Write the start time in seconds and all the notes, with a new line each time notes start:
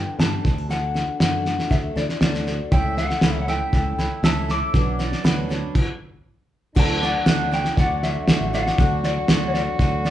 Already playing: G2 D3 B3 D4 A4 G5
0.19 G2 G3 B3 D4 A4 A5, snare
0.44 D2 A3 D4 E4 A4, kick, snare
0.58 F#4
0.69 D3 F#3 A3 D4 A4 F#5, snare
0.94 A3 D4 A4, snare
1.20 F#2 D3 F#3 A3 D4 F#4 A4 F#5, snare
1.45 A3 D4 A4, snare
1.59 snare
1.70 D2 F#3 A3 D4 A4 E5, kick, snare
1.96 D2 A3 D4 A4 D5, snare
2.09 snare
2.21 D2 D3 F#3 A3 D4 A4 D5, snare
2.34 snare
2.46 D2 A3 D4 F#4 A4, snare
2.71 C#2 C#3 E3 A3 C#4 E4 A4 C#5 E5 G5, kick, snare
2.97 A3 C#4 A4 F#5, snare
3.10 snare
3.21 C#2 C#3 E3 A3 C#4 E4 A4 C#5, snare
3.42 F#5
3.48 A3 C#4 E4 A4 C#5 E5 G5, snare
3.73 C#2 E3 A3 C#4 E4 A4 C#5, kick, snare
3.97 C#2 A3 C#4 E4 A4, snare
4.23 C#2 C#3 E3 A3 C#4 E4 A4 C#5 E5 A5, snare
4.48 A3 C#4 A4 D6, snare
4.73 B1 B2 F#3 C#4 D4 F#4 B4, kick, snare
4.99 C#4 D4 F#4 D5, snare
5.12 snare
5.23 D2 B2 F#3 C#4 D4 F#4 B4, snare
5.49 F#3 C#4 D4 F#4 C#5, snare
5.75 kick, crash
6.74 D2 D3 F#3 A3 D4 F#4 A4 D5, kick, snare, crash
6.80 A5
7.01 A3 D4 F#4 D5 F#5, snare
7.26 D2 D3 F#3 A3 D4 F#4 A4 E5 F#5, snare
7.51 A3 D4 F#4 G5, snare
7.65 snare
7.77 D2 F#3 A3 D4 F#4 A4 D5 F#5, kick, snare
8.03 F#3 D4 F#4 A4 D5 E5, snare
8.28 D2 D3 F#3 A3 D4 F#4 A4 D5, snare
8.41 A1
8.53 A3 D4 F#4 D5 F#5, snare
8.66 snare
8.78 D2 D3 F#3 A3 D4 F#4 A4 D5 F#5, kick, snare
9.03 A3 D4 F#4 D5, snare
9.28 D2 D3 F#3 A3 D4 F#4 A4 D5, snare
9.48 C#5
9.54 A3 D4 F#4 D5, snare
9.79 D2 F#3 A3 D4 F#4 A4 C#5, kick, snare
10.04 F#3 A3 D4 F#4 A4 D5, snare